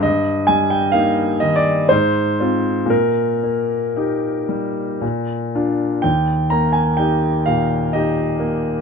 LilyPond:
<<
  \new Staff \with { instrumentName = "Grand piano" } { \time 3/4 \key ees \major \tempo 4 = 62 ees''8 aes''16 g''16 \tuplet 3/2 { f''8. ees''16 d''8 } c''4 | bes'2~ bes'8 r8 | g''8 bes''16 aes''16 g''8 f''8 ees''4 | }
  \new Staff \with { instrumentName = "Grand piano" } { \time 3/4 \key ees \major g,8 g8 <bes ees'>8 ees8 aes,8 <c' f'>8 | bes,8 bes8 <ees' g'>8 g8 bes,8 <d' f'>8 | ees,8 bes8 <ees' g'>8 bes,8 <ees' g'>8 bes8 | }
>>